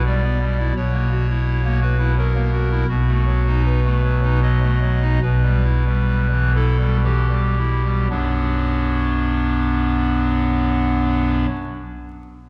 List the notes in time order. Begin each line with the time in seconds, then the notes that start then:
Already playing: B1 B2
0.06 G3 D5
0.23 B3
0.41 G3
0.59 E4
0.76 B1 B2 C#5
0.93 A#3
1.11 F#4
1.29 E4
1.65 A#3
1.82 F#4 B4
1.99 E4
2.18 F#3 A#4
2.35 A#3
2.53 F#4
2.71 E4
2.89 B1 B2 F#4
3.08 A3
3.27 F#3
3.46 D#4
3.65 B4
3.85 A3
4.04 F#3
4.23 D#4
4.42 F#3 D#5
4.62 A3
4.82 F#3
5.02 D#4
5.22 B1 B2 B4
5.43 G3
5.64 E4
5.86 G3
6.31 E3
6.55 E4 A4
6.79 G3
7.03 E3 G4
7.30 G3
7.58 E4
7.84 G3
8.10 B1 F#2 F#3 B3 D4